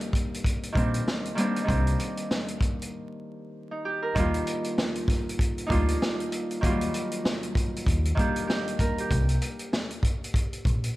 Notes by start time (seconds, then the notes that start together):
Already playing: D#3 G3 A#3 C4 D4 G4 A#4
0.01 closed hi-hat
0.13 kick, closed hi-hat
0.34 closed hi-hat
0.44 kick, closed hi-hat
0.63 closed hi-hat
0.72 A#1 D#3 G3 A#3 C4, kick
0.77 D4, closed hi-hat
0.94 closed hi-hat
1.08 snare
1.25 closed hi-hat
1.35 D#3 G3 A#3 C4, closed hi-hat
1.40 D4
1.56 closed hi-hat
1.64 D#3 G3 A#3 C4
1.68 C2 D4, kick, closed hi-hat
1.87 closed hi-hat
1.99 closed hi-hat
2.17 closed hi-hat
2.31 snare
2.48 closed hi-hat
2.61 kick, closed hi-hat
2.82 closed hi-hat
3.71 D#4
3.85 G4
4.03 A#4
4.15 D#2 D#3 G3 A#3 D4, kick, closed hi-hat
4.20 F4
4.34 closed hi-hat
4.47 closed hi-hat
4.64 closed hi-hat
4.78 snare
4.95 closed hi-hat
5.08 kick, snare, closed hi-hat
5.29 closed hi-hat
5.39 kick, closed hi-hat
5.58 closed hi-hat
5.66 D2 G3 A#3 D4 D#4, kick
5.71 F4, closed hi-hat
5.88 closed hi-hat
6.02 snare
6.20 closed hi-hat
6.32 closed hi-hat
6.51 closed hi-hat
6.61 D#2 D#3 F#3 A#3 D4, kick, closed hi-hat
6.66 G3 F4
6.81 closed hi-hat
6.94 closed hi-hat
7.11 closed hi-hat
7.25 snare
7.43 closed hi-hat
7.55 kick, closed hi-hat
7.76 closed hi-hat
7.86 D#2, kick, closed hi-hat
8.05 closed hi-hat
8.15 D#3 G3 A#3 D4, kick, closed hi-hat
8.20 G4
8.36 closed hi-hat
8.47 G4, snare
8.68 closed hi-hat
8.79 D#2 A#4, kick, closed hi-hat
8.98 G4, closed hi-hat
9.11 C2, kick, closed hi-hat
9.29 closed hi-hat
9.42 closed hi-hat
9.59 closed hi-hat
9.73 snare
9.91 closed hi-hat
10.03 kick, closed hi-hat
10.24 closed hi-hat
10.34 kick, closed hi-hat
10.53 closed hi-hat
10.65 A#1, kick, closed hi-hat
10.84 closed hi-hat